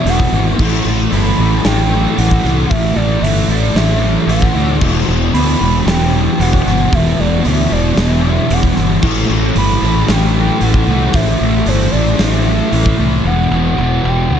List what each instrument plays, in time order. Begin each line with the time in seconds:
Already playing: soft synth lead E5
0.05 fingered electric bass E1, distorted electric guitar E2 B2, open hi-hat
0.09 distorted electric guitar E3, soft synth lead F#5
0.20 kick
0.31 fingered electric bass G#1, distorted electric guitar E3
0.36 distorted electric guitar B2
0.57 fingered electric bass A1, distorted electric guitar A2 E3, kick, crash
0.62 distorted electric guitar A3
0.84 fingered electric bass A1, distorted electric guitar E3 A3
1.11 fingered electric bass G1, distorted electric guitar A2 E3 A3, soft synth lead B5, open hi-hat
1.37 fingered electric bass A1, distorted electric guitar E3 A3
1.63 fingered electric bass A1, distorted electric guitar A2 E3 A3, soft synth lead G5, snare, open hi-hat
1.90 distorted electric guitar A3
1.94 distorted electric guitar E3
2.17 fingered electric bass A1, distorted electric guitar A2 E3 A3, soft synth lead F#5, open hi-hat
2.31 kick
2.44 fingered electric bass C2, distorted electric guitar E3 A3, snare
2.69 fingered electric bass A1, distorted electric guitar A2 E3 A3, soft synth lead E5, kick, open hi-hat
2.95 fingered electric bass A1, distorted electric guitar A3, soft synth lead D5
2.99 distorted electric guitar E3
3.21 fingered electric bass G1, distorted electric guitar A2 E3 A3, soft synth lead E5, open hi-hat
3.48 fingered electric bass A1, distorted electric guitar E3 A3, soft synth lead D5
3.74 fingered electric bass A1, distorted electric guitar A2 E3, soft synth lead E5, snare, open hi-hat
3.78 distorted electric guitar A3
4.01 distorted electric guitar E3 A3
4.26 fingered electric bass A1, distorted electric guitar A2 E3 A3, soft synth lead F#5, open hi-hat
4.42 kick
4.53 fingered electric bass D2, distorted electric guitar E3 A3
4.78 fingered electric bass E1, distorted electric guitar E2 B2 E3, kick, crash
5.07 fingered electric bass E1, distorted electric guitar B2 E3
5.33 fingered electric bass D2, distorted electric guitar E2 B2 E3, soft synth lead B5, open hi-hat
5.59 fingered electric bass E1, distorted electric guitar B2 E3
5.86 fingered electric bass E1, distorted electric guitar E2 B2 E3, soft synth lead G5, snare, open hi-hat
6.13 distorted electric guitar B2 E3
6.39 fingered electric bass E1, distorted electric guitar E2 B2 E3, soft synth lead F#5, open hi-hat
6.53 kick
6.65 fingered electric bass G1, distorted electric guitar E3, snare
6.69 distorted electric guitar B2
6.92 fingered electric bass E1, distorted electric guitar E2 B2 E3, soft synth lead E5, kick, open hi-hat
7.18 fingered electric bass E1, distorted electric guitar B2 E3, soft synth lead D5
7.43 fingered electric bass D2, distorted electric guitar E2 B2 E3, soft synth lead E5, open hi-hat
7.69 fingered electric bass E1, distorted electric guitar B2 E3, soft synth lead D5
7.95 fingered electric bass E1, distorted electric guitar E2 B2 E3, soft synth lead E5, snare, open hi-hat
8.22 distorted electric guitar B2 E3
8.48 fingered electric bass E1, distorted electric guitar E2 B2 E3, open hi-hat
8.53 soft synth lead F#5
8.63 kick
8.76 fingered electric bass G1, distorted electric guitar B2 E3, snare
9.01 fingered electric bass A1, distorted electric guitar A2 E3 A3, kick, crash
9.29 fingered electric bass A1, distorted electric guitar E3 A3
9.55 fingered electric bass G1, distorted electric guitar A2 E3 A3, soft synth lead B5, open hi-hat
9.81 fingered electric bass A1, distorted electric guitar E3 A3
10.07 fingered electric bass A1, distorted electric guitar A2 E3 A3, soft synth lead G5, snare, open hi-hat
10.34 distorted electric guitar E3 A3
10.60 fingered electric bass A1, distorted electric guitar A2 E3 A3, soft synth lead F#5, open hi-hat
10.74 kick
10.87 fingered electric bass C2, distorted electric guitar E3 A3
11.12 fingered electric bass A1, distorted electric guitar A2 E3 A3, soft synth lead E5, kick, open hi-hat
11.40 fingered electric bass A1, distorted electric guitar E3 A3
11.66 fingered electric bass G1, distorted electric guitar A2 E3 A3, soft synth lead C5, open hi-hat
11.91 fingered electric bass A1, distorted electric guitar A3, soft synth lead D5
11.96 distorted electric guitar E3
12.18 fingered electric bass A1, distorted electric guitar A2 E3 A3, soft synth lead E5, snare, open hi-hat
12.46 distorted electric guitar E3 A3
12.71 fingered electric bass A1, distorted electric guitar A2 E3 A3, open hi-hat
12.86 kick
12.98 fingered electric bass C2, distorted electric guitar E3 A3
13.24 fingered electric bass E1, distorted electric guitar E2 B2 E3, soft synth lead F#5
13.50 fingered electric bass E1, distorted electric guitar B2 E3
13.77 fingered electric bass E1, distorted electric guitar E2 B2
13.82 distorted electric guitar E3
14.04 fingered electric bass E1
14.08 soft synth lead G5
14.30 fingered electric bass D2, soft synth lead F#5